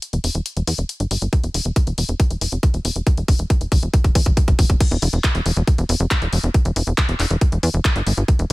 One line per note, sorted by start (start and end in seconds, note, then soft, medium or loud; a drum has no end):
0.02 closed hi-hat medium
0.13 0.19 E1 medium
0.13 closed hi-hat medium
0.24 0.30 E1 loud
0.24 open hi-hat loud
0.35 0.41 E1 loud
0.35 closed hi-hat medium
0.46 closed hi-hat medium
0.57 0.63 E1 medium
0.57 closed hi-hat medium
0.67 0.74 E2 loud
0.67 open hi-hat loud
0.78 0.85 E1 medium
0.78 closed hi-hat medium
0.89 closed hi-hat loud
1.00 1.06 G1 medium
1.00 closed hi-hat medium
1.11 1.17 G1 loud
1.11 open hi-hat loud
1.22 1.28 G1 medium
1.22 closed hi-hat medium
1.33 kick loud
1.33 closed hi-hat medium
1.44 1.50 E1 medium
1.44 closed hi-hat medium
1.54 1.61 E1 loud
1.54 open hi-hat loud
1.65 1.72 E1 medium
1.65 closed hi-hat medium
1.76 kick loud
1.76 closed hi-hat medium
1.87 1.93 E1 medium
1.87 closed hi-hat medium
1.98 2.04 E1 loud
1.98 open hi-hat loud
2.09 2.15 E1 medium
2.09 closed hi-hat medium
2.20 kick loud
2.20 closed hi-hat medium
2.30 2.37 E1 medium
2.30 closed hi-hat medium
2.41 2.48 E1 loud
2.41 open hi-hat loud
2.52 2.59 F1 medium
2.52 closed hi-hat medium
2.63 kick loud
2.63 closed hi-hat loud
2.74 2.80 E1 medium
2.74 closed hi-hat soft
2.85 2.91 E1 loud
2.85 open hi-hat loud
2.96 3.02 E1 medium
2.96 closed hi-hat medium
3.07 kick loud
3.07 closed hi-hat medium
3.17 3.24 E1 medium
3.17 closed hi-hat medium
3.28 3.35 E1 loud
3.28 kick loud
3.28 open hi-hat loud
3.39 3.46 E1 medium
3.39 closed hi-hat medium
3.50 kick loud
3.50 closed hi-hat medium
3.61 3.67 E1 medium
3.61 closed hi-hat medium
3.72 3.78 E1 loud
3.72 kick loud
3.72 open hi-hat loud
3.83 3.89 E1 loud
3.83 closed hi-hat medium
3.94 kick loud
3.94 closed hi-hat medium
4.04 4.11 E1 medium
4.04 kick medium
4.04 closed hi-hat medium
4.15 4.22 E2 loud
4.15 kick loud
4.15 open hi-hat loud
4.26 4.32 E1 medium
4.26 kick loud
4.26 closed hi-hat medium
4.37 kick loud
4.37 closed hi-hat medium
4.48 4.54 E1 medium
4.48 kick medium
4.48 closed hi-hat soft
4.59 4.65 E1 loud
4.59 kick loud
4.59 open hi-hat loud
4.70 4.76 E1 medium
4.70 kick medium
4.70 closed hi-hat medium
4.80 kick loud
4.80 closed hi-hat medium
4.80 crash loud
4.91 4.98 E1 medium
4.91 closed hi-hat medium
5.02 5.09 E1 loud
5.02 open hi-hat loud
5.13 5.19 E1 medium
5.13 closed hi-hat medium
5.24 kick loud
5.24 clap loud
5.24 closed hi-hat loud
5.35 5.41 E1 medium
5.35 closed hi-hat medium
5.46 5.52 E1 loud
5.46 open hi-hat loud
5.57 5.63 E1 medium
5.57 closed hi-hat medium
5.67 kick loud
5.67 closed hi-hat medium
5.78 5.85 E1 medium
5.78 closed hi-hat medium
5.89 5.96 E1 loud
5.89 open hi-hat loud
6.00 6.06 F1 medium
6.00 closed hi-hat medium
6.11 kick loud
6.11 clap loud
6.11 closed hi-hat loud
6.22 6.28 E1 medium
6.22 closed hi-hat medium
6.33 6.39 E1 loud
6.33 open hi-hat loud
6.43 6.50 E1 medium
6.43 closed hi-hat medium
6.54 kick loud
6.54 closed hi-hat medium
6.65 6.72 E1 medium
6.65 closed hi-hat medium
6.76 6.82 E1 loud
6.76 open hi-hat loud
6.87 6.93 E1 medium
6.87 closed hi-hat medium
6.98 kick loud
6.98 clap loud
6.98 closed hi-hat loud
7.09 7.15 E1 medium
7.09 closed hi-hat medium
7.20 7.26 E1 loud
7.20 clap soft
7.20 open hi-hat loud
7.30 7.37 E1 medium
7.30 closed hi-hat medium
7.41 kick loud
7.41 closed hi-hat medium
7.52 7.59 E1 medium
7.52 closed hi-hat medium
7.63 7.69 E2 loud
7.63 open hi-hat loud
7.74 7.80 E1 loud
7.74 closed hi-hat medium
7.85 kick loud
7.85 clap loud
7.85 closed hi-hat loud
7.96 8.02 G1 medium
7.96 closed hi-hat medium
8.07 8.13 G1 loud
8.07 open hi-hat loud
8.17 8.24 G1 medium
8.17 closed hi-hat medium
8.28 kick loud
8.28 closed hi-hat medium
8.39 8.46 E1 medium
8.39 closed hi-hat medium